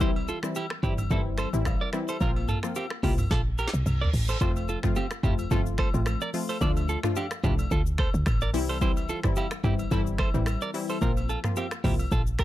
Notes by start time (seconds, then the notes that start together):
Already playing: C2
0.00 E3 G3 C4 E4 G4 C5, kick, shaker
0.16 high agogo
0.28 F4 A4, shaker
0.43 E3 G3 C4 E4, finger snap, cross-stick, shaker
0.55 E4 G4, high agogo, shaker
0.70 finger snap, cross-stick
0.83 G1 E3 G3 C4 E4 G4, kick, shaker
0.98 mid tom, high agogo, shaker
1.10 G1 E3 G3 C4 E4 A4, kick, shaker
1.38 A4 C5, finger snap, cross-stick, high agogo, shaker
1.53 A1 E3 G3 C4 E4, shaker
1.65 finger snap, kick, cross-stick, high agogo, low woodblock, shaker
1.81 A#4 D5
1.93 E3 G3 C4 E4, finger snap, cross-stick, shaker
2.08 A4 C5, high agogo, shaker
2.21 A#1 F3 A#3 C4 F4 A#4, kick, shaker
2.36 high agogo
2.48 F4 A4, mid tom, shaker
2.63 F3 A#3 C4 F4, finger snap, cross-stick, shaker
2.75 C4 G4, high agogo, low woodblock, shaker
2.90 finger snap, cross-stick
3.03 C2 F3 A#3 C4 E4 F4 G4, kick, open hi-hat, shaker
3.18 mid tom, high agogo, shaker
3.31 A#1 F4 A4, kick, snare, reverse cymbal, shaker
3.58 G4 A#4, high agogo, shaker
3.68 snare
3.74 C2, shaker
3.86 C2, mid tom, high agogo, shaker
4.01 A#4 D5, floor tom
4.14 A1, open hi-hat, shaker
4.29 A4 C5, high agogo, shaker
4.41 F1 F3 A3 C4 F4 A4 C5, kick, shaker
4.56 high agogo, shaker
4.69 F4 A4, shaker
4.83 F3 A3 C4 F4, finger snap, kick, cross-stick, mid tom, shaker
4.96 C4 G4, high agogo, low woodblock, shaker
5.11 finger snap, cross-stick, shaker
5.23 F1 F3 A3 C4 E4 F4 G4, kick, mid tom, shaker
5.39 high agogo, shaker
5.51 G1 F3 A3 C4 F4 A4, kick, shaker
5.66 shaker
5.78 A4 C5, finger snap, kick, cross-stick, high agogo
5.94 A1 F3 A3 C4 F4, shaker
6.06 finger snap, cross-stick, high agogo, shaker
6.21 A#4 D5, shaker
6.33 F3 A3 C4 F4, open hi-hat, shaker
6.49 A4 C5, high agogo, shaker
6.61 D2 F3 A3 D4 F4 A4 D5, kick, shaker
6.77 high agogo, shaker
6.89 F4 A4, shaker
7.03 F3 A3 D4 F4, finger snap, cross-stick, mid tom, shaker
7.16 D4 G4, high agogo, low woodblock, shaker
7.31 finger snap, cross-stick, shaker
7.43 C2 F3 A3 D4 E4 F4 G4, kick, mid tom, shaker
7.59 high agogo, shaker
7.71 D2 F4 A4, kick, shaker
7.86 shaker
7.98 A4 C5, finger snap, kick, cross-stick, high agogo
8.14 D2, shaker
8.26 A1, finger snap, kick, cross-stick, high agogo, shaker
8.41 A#4 D5, shaker
8.54 C2 E3 G3 C4 E4, open hi-hat, shaker
8.69 A4 C5, high agogo, shaker
8.81 E3 G3 C4 E4 G4 C5, kick, shaker
8.97 high agogo, shaker
9.09 F4 A4, shaker
9.23 E3 G3 C4 E4, finger snap, kick, cross-stick, mid tom, shaker
9.36 E4 G4, high agogo, low woodblock, shaker
9.51 finger snap, cross-stick, shaker
9.64 G1 E3 G3 C4 E4 G4, kick, mid tom, shaker
9.79 high agogo, shaker
9.91 G1 E3 G3 C4 E4 A4, kick, shaker
10.07 shaker
10.18 A4 C5, finger snap, kick, cross-stick, high agogo
10.34 A1 E3 G3 C4 E4, shaker
10.46 finger snap, cross-stick, high agogo, shaker
10.61 A#4 D5, shaker
10.74 E3 G3 C4 E4, open hi-hat, shaker
10.89 A4 C5, high agogo, shaker
11.01 A#1 F3 A#3 C4 F4 A#4, kick, shaker
11.17 high agogo, shaker
11.29 F4 A4, shaker
11.44 F3 A#3 C4 F4, finger snap, cross-stick, mid tom, shaker
11.56 C4 G4, high agogo, low woodblock, shaker
11.71 finger snap, cross-stick, shaker
11.84 C2 F3 A#3 C4 E4 F4 G4, kick, mid tom, open hi-hat, shaker
11.99 high agogo, shaker
12.12 A#1 F4 A4, kick, shaker
12.27 shaker
12.39 G4 A#4, finger snap, kick, cross-stick, high agogo, shaker